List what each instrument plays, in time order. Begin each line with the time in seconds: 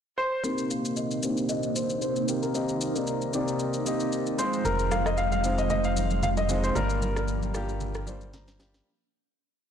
0.18 grand piano C5
0.43 string machine C3 A#3 D#4, grand piano A#3 C4 D#4 G4 A#4 C5, shaker
0.58 shaker
0.70 grand piano F5, shaker
0.85 shaker
0.96 grand piano D#5, shaker
1.11 shaker
1.22 grand piano A#3 C4 D4 G4 C5, shaker
1.30 grand piano D#4
1.37 shaker
1.49 grand piano D#5, shaker
1.63 shaker
1.76 grand piano C5, shaker
1.90 shaker
2.02 grand piano C5, shaker
2.16 shaker
2.28 grand piano A#3 C4 D#4 G4 A#4, shaker
2.43 grand piano A#4, shaker
2.54 grand piano A#3 C4 D#4 G4 D#5, string machine C4, shaker
2.69 shaker
2.81 shaker
2.95 grand piano A#3 C4 D#4 G4 D5, shaker
3.07 shaker
3.22 shaker
3.33 grand piano A#3 C4 D#4 G4 D5, shaker
3.48 shaker
3.59 shaker
3.74 shaker
3.85 grand piano A#3 C4 D#4 G4 D#5, shaker
4.00 shaker
4.12 shaker
4.27 shaker
4.38 string machine D#3 G#3 F4, grand piano G#3 C4 D#4 F4 C5, shaker
4.53 shaker
4.65 sub bass F1, grand piano A#4, low conga, shaker
4.79 shaker
4.91 grand piano F5, cross-stick, high conga, shaker
5.06 grand piano D#5, cross-stick, shaker
5.17 grand piano F5, shaker
5.32 grand piano F5, high conga, shaker
5.43 grand piano G#3 C4 D#4 F4 C5, shaker
5.58 grand piano D#5, shaker
5.70 grand piano D#5, low conga, shaker
5.84 grand piano F5, shaker
5.97 high conga, shaker
6.10 high conga, shaker
6.23 grand piano F5, low conga, shaker
6.37 grand piano D#5, high conga, shaker
6.49 grand piano G#3 C4 D#4 F4 C5, high conga, low conga, shaker
6.64 grand piano C5, shaker
6.75 sub bass G1, string machine F3 A#3 G4, grand piano G3 A#3 D4 F4 A#4, low conga, shaker
6.90 shaker
7.02 high conga, shaker
7.16 grand piano G3 A#3 D4 F4 A#4, cross-stick, shaker
7.28 shaker
7.43 high conga, shaker
7.54 grand piano G3 A#3 D4 F4 G4, cross-stick, shaker
7.69 shaker
7.80 low conga, shaker
7.95 cross-stick, shaker
8.07 grand piano G3 A#3 D4 F4 C5, high conga, shaker
8.21 high conga, shaker
8.33 grand piano A#5, snare, low conga, shaker
8.48 snare, high conga, shaker
8.59 grand piano G3 A#3 D4 F4 G4, snare, high conga, shaker
8.74 snare, shaker